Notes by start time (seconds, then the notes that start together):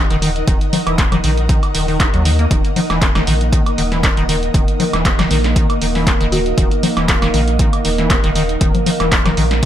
Already playing: D#4 A#4 D#5 F#5
0.10 D#1 D#3, closed hi-hat
0.22 D#3, open hi-hat
0.36 closed hi-hat
0.47 D#1 D#3, kick, closed hi-hat
0.61 closed hi-hat
0.73 D#3, open hi-hat, low conga
0.87 D#1 E3, closed hi-hat, high woodblock
0.98 D#4, kick, clap, closed hi-hat
1.12 D#3, closed hi-hat, low conga, high woodblock
1.24 A#1 D#3, open hi-hat
1.37 closed hi-hat
1.49 D#3, kick, closed hi-hat
1.63 closed hi-hat, high woodblock
1.75 D#1 D#3, open hi-hat
1.88 D#3, open hi-hat
2.00 D#4, kick, clap, closed hi-hat
2.14 D#2 F#3, closed hi-hat
2.25 D#3, open hi-hat
2.39 A#3, closed hi-hat
2.51 D#1 D#3 A#3 A#4, kick, closed hi-hat
2.65 closed hi-hat
2.76 D#3, open hi-hat, low conga
2.90 D#1 E3, snare, closed hi-hat, high woodblock
3.02 D#4, kick, clap, closed hi-hat
3.15 D#3, snare, closed hi-hat, high woodblock
3.27 A#1 D#3, open hi-hat
3.41 closed hi-hat
3.52 D#3, kick, closed hi-hat
3.66 closed hi-hat, high woodblock
3.78 D#1 D#3, open hi-hat
3.92 E3, snare, closed hi-hat
4.03 D#4, kick, clap, closed hi-hat
4.17 D#1 D#3, closed hi-hat
4.29 D#3, open hi-hat
4.43 closed hi-hat
4.54 D#1 D#3, kick, closed hi-hat
4.68 closed hi-hat
4.80 D#3, open hi-hat, low conga
4.93 D#1 E3, snare, closed hi-hat, high woodblock
5.05 D#4, kick, clap, closed hi-hat
5.19 D#3, snare, closed hi-hat, low conga, high woodblock
5.31 A#1 D#3, open hi-hat
5.44 snare, closed hi-hat
5.56 D#3, kick, closed hi-hat
5.70 closed hi-hat, high woodblock
5.81 D#1 D#3, open hi-hat
5.95 E3, snare, open hi-hat
6.07 D#4, kick, clap, closed hi-hat
6.20 D#1 D#3, closed hi-hat
6.32 D#3 F#4, open hi-hat
6.46 closed hi-hat
6.58 D#1 D#3, kick, closed hi-hat
6.71 closed hi-hat
6.83 D#3, open hi-hat, low conga
6.97 D#1 E3, snare, closed hi-hat, high woodblock
7.08 D#4, kick, clap, closed hi-hat
7.22 D#3, snare, closed hi-hat, high woodblock
7.34 A#1 D#3, open hi-hat
7.48 closed hi-hat
7.59 D#3, kick, closed hi-hat
7.73 closed hi-hat, high woodblock
7.85 D#1 D#3, open hi-hat
7.98 E3, snare, closed hi-hat
8.10 D#4, kick, clap, closed hi-hat
8.24 D#1 D#3, closed hi-hat
8.35 D#3, open hi-hat
8.49 closed hi-hat
8.61 D#1 D#3, kick, closed hi-hat
8.75 closed hi-hat, low conga
8.86 D#3, open hi-hat, low conga
9.00 D#1 E3, snare, closed hi-hat, high woodblock
9.12 D#4, kick, clap, closed hi-hat
9.26 D#3, snare, closed hi-hat, low conga, high woodblock
9.37 A#1 D#3, open hi-hat
9.51 snare, closed hi-hat